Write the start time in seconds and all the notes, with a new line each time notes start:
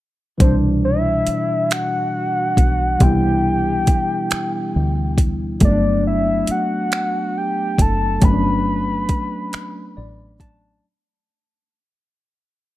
0.38 C2 B2 E3 G3 C5, kick, closed hi-hat
0.44 D4
0.85 E5
1.27 muted fingered electric bass stroke, closed hi-hat
1.71 F#5, finger snap, closed hi-hat
2.57 B1, kick, closed hi-hat
2.99 C2 E3 G3 B3 G5, kick, closed hi-hat
3.05 E4
3.87 muted fingered electric bass stroke, kick, closed hi-hat
4.31 finger snap, muted fingered electric bass stroke, closed hi-hat
4.76 D2
5.18 kick, closed hi-hat
5.60 G1 F#3 A3 B3, kick, closed hi-hat
5.65 C#4 D5
5.72 D4
6.07 E5
6.47 F#5, muted fingered electric bass stroke, closed hi-hat
6.92 finger snap, closed hi-hat
7.38 G5
7.78 F#1 A5, kick, closed hi-hat
8.20 G1 F#3 A3 B3, kick, closed hi-hat
8.25 C#4 B5
8.32 D4
9.09 muted fingered electric bass stroke, kick, closed hi-hat
9.53 finger snap, muted fingered electric bass stroke, closed hi-hat
9.97 A1 D5
10.40 A5, kick, closed hi-hat